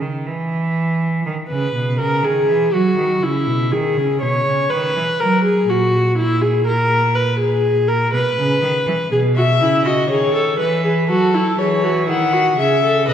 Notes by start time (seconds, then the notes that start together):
0.01 D#3
0.27 E3
1.26 D#3
1.50 C#3 B4
1.74 B2
1.99 C#3 A#4
2.23 D#3 G#4
2.48 E3
2.72 F#3 F#4
2.97 D#3
3.22 C#3 E4
3.47 B2
3.72 D#3 G#4
3.97 C#3
4.22 B2 C#5
4.46 C#3
4.70 D#3 B4
4.96 E3
5.20 F#3 A#4
5.44 G#4
5.69 A#2 F#4
6.18 E4
6.41 G#4
6.67 A#4
7.15 B4
7.40 G#4
7.88 A#4
8.13 B2 B4
8.38 C#3
8.62 D#3
8.87 E3
9.11 B2 G#4
9.36 F#4 E5
9.61 C#3 E4
9.85 F#4 D#5
10.10 D#3 G#4 C#5
10.34 A4
10.58 E3 B4
10.85 G#4
11.08 F#3 F#4 A4
11.34 E4
11.58 E3 G#4 C#5
11.84 F#4
12.08 D#3 E4 F#5
12.33 F#4
12.58 C#3 G#4 E5
12.84 A4
13.08 B2 B4 D#5